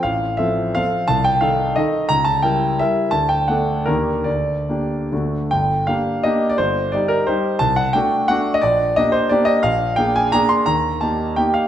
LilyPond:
\new Staff \with { instrumentName = "Grand piano" } { \time 3/4 \key f \major \tempo 4 = 173 << { f''4 e''4 f''4 | \key g \minor a''8 g''8 f''4 ees''4 | ais''8 a''8 g''4 e''4 | a''8 g''8 fis''4 bes'4 |
d''2~ d''8 r8 | g''4 f''4 ees''8. d''16 | c''4 d''8 bes'8 c''4 | a''8 fis''8 g''4 fis''8. ees''16 |
d''4 ees''8 c''8 d''8 ees''8 | f''4 g''8 aes''8 bes''8 c'''8 | bes''4 a''4 g''8 f''8 | } \\ { a,,4 <f c' a'>4 <f c' a'>4 | c,4 <ees ees' a'>4 <ees ees' a'>4 | cis,4 <g e' ais'>4 <g e' ais'>4 | d,4 <a d' a'>4 <ees, bes d' g'>4 |
d,4 <bes d' g'>4 <d, a d' fis'>4 | g,,4 <bes d' g'>4 <bes d' g'>4 | g,,4 <g ees' g'>4 <g ees' g'>4 | c,4 <a d' fis'>4 <a d' fis'>4 |
bes,,4 <bes d' g'>4 <bes d' g'>4 | bes,,4 <bes d' aes'>4 <bes d' aes'>4 | ees,4 <bes ees' g'>4 <bes ees' g'>4 | } >> }